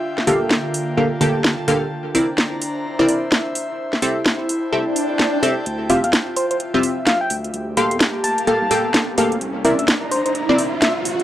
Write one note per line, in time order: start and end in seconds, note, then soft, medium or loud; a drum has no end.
0.00 1.91 D3 medium
0.00 0.67 D4 medium
0.00 1.91 F4 medium
0.00 0.45 C5 medium
0.00 0.67 E5 medium
0.00 2.58 G5 medium
0.07 2.58 A#3 medium
0.18 snare medium
0.27 0.95 D3 medium
0.27 0.95 A#3 medium
0.27 0.95 G4 medium
0.27 0.95 A4 medium
0.27 0.95 F5 loud
0.27 open hi-hat loud
0.51 snare loud
0.74 1.91 A5 medium
0.74 open hi-hat loud
0.97 1.09 D3 medium
0.97 1.09 A#3 medium
0.97 1.09 G4 medium
0.97 1.09 A4 medium
0.97 1.09 F5 medium
1.21 1.66 D3 loud
1.21 1.66 A#3 medium
1.21 1.66 G4 medium
1.21 1.66 A4 medium
1.21 1.66 G5 loud
1.21 open hi-hat loud
1.44 snare loud
1.68 1.85 D3 medium
1.68 1.85 A#3 medium
1.68 1.85 G4 medium
1.68 1.85 A4 medium
1.68 1.85 F5 loud
1.68 open hi-hat loud
1.92 4.42 D4 medium
2.02 7.98 C5 medium
2.09 3.55 A#5 medium
2.15 2.27 C4 medium
2.15 2.27 E4 medium
2.15 2.27 A#4 medium
2.15 2.27 D5 medium
2.15 open hi-hat loud
2.38 snare loud
2.56 4.42 E5 medium
2.62 open hi-hat loud
2.99 3.54 C4 medium
2.99 3.54 E4 medium
2.99 3.54 A#4 medium
2.99 3.54 D5 loud
3.09 open hi-hat loud
3.32 snare loud
3.55 5.66 E4 medium
3.55 open hi-hat loud
3.93 snare medium
4.02 4.70 C4 medium
4.02 4.70 G4 medium
4.02 4.70 A4 medium
4.02 4.70 E5 medium
4.02 open hi-hat loud
4.24 8.17 G5 medium
4.24 snare loud
4.36 6.33 A5 medium
4.49 open hi-hat loud
4.72 4.84 C4 medium
4.72 4.84 G4 medium
4.72 4.84 A4 medium
4.72 4.84 E5 medium
4.72 swell medium
4.96 open hi-hat loud
5.19 snare loud
5.43 5.55 C4 loud
5.43 5.55 G4 medium
5.43 5.55 A4 medium
5.43 5.55 E5 loud
5.43 open hi-hat loud
5.66 6.05 D2 medium
5.66 8.17 F4 medium
5.66 closed hi-hat medium
5.66 riser medium
5.90 6.02 C4 medium
5.90 6.02 F4 medium
5.90 6.02 G4 medium
5.90 6.02 E5 medium
5.90 5.99 F5 medium
5.90 open hi-hat loud
6.04 6.12 F2 loud
6.04 6.10 F5 medium
6.04 closed hi-hat medium
6.13 snare loud
6.13 closed hi-hat medium
6.35 6.46 C5 medium
6.35 7.30 E5 medium
6.35 open hi-hat loud
6.51 6.57 C5 medium
6.51 closed hi-hat medium
6.60 closed hi-hat medium
6.74 6.82 C2 medium
6.74 7.29 C4 medium
6.74 7.29 F4 medium
6.74 7.29 G4 medium
6.74 7.29 E5 loud
6.83 open hi-hat loud
7.07 7.18 F5 medium
7.07 snare loud
7.07 closed hi-hat medium
7.21 7.36 G5 medium
7.30 7.51 D2 medium
7.30 10.08 G4 medium
7.30 open hi-hat loud
7.44 closed hi-hat soft
7.54 7.93 D2 loud
7.54 10.08 A#3 medium
7.54 closed hi-hat medium
7.77 8.45 A#3 medium
7.77 8.45 G4 medium
7.77 8.45 A4 medium
7.77 8.45 F5 medium
7.77 9.41 A5 medium
7.77 7.96 C6 medium
7.77 open hi-hat loud
7.90 7.99 F2 loud
7.90 9.41 F5 medium
7.90 closed hi-hat medium
8.01 snare loud
8.01 closed hi-hat medium
8.24 8.42 A5 medium
8.24 open hi-hat loud
8.38 closed hi-hat medium
8.47 8.59 A#3 medium
8.47 8.59 G4 medium
8.47 8.59 A4 medium
8.47 8.59 F5 medium
8.47 9.14 A5 loud
8.47 closed hi-hat medium
8.62 8.69 C2 medium
8.71 9.16 A#3 loud
8.71 9.16 G4 medium
8.71 9.16 A4 medium
8.71 9.16 G5 loud
8.71 open hi-hat loud
8.94 snare loud
8.94 closed hi-hat medium
9.18 9.38 D2 medium
9.18 9.35 A#3 medium
9.18 9.35 G4 medium
9.18 9.35 A4 medium
9.18 9.35 F5 loud
9.18 open hi-hat loud
9.32 closed hi-hat soft
9.41 9.80 C2 loud
9.41 11.23 D4 medium
9.41 closed hi-hat medium
9.59 11.05 A#5 loud
9.65 9.77 C4 medium
9.65 9.77 E4 medium
9.65 9.77 A#4 medium
9.65 9.77 D5 medium
9.65 9.74 E5 medium
9.65 open hi-hat loud
9.77 9.87 E2 loud
9.77 11.23 C5 medium
9.77 9.85 E5 medium
9.77 11.23 E5 medium
9.77 closed hi-hat medium
9.88 snare loud
9.88 closed hi-hat medium
10.11 10.21 C5 medium
10.11 open hi-hat loud
10.26 10.32 C5 medium
10.26 closed hi-hat medium
10.35 closed hi-hat medium
10.49 10.57 A#1 medium
10.49 11.04 C4 medium
10.49 11.04 E4 medium
10.49 11.04 A#4 medium
10.49 11.04 D5 loud
10.58 open hi-hat loud
10.82 10.93 E5 medium
10.82 snare loud
10.82 closed hi-hat medium
11.05 11.23 A1 medium
11.05 11.23 G4 medium
11.05 open hi-hat loud
11.20 closed hi-hat soft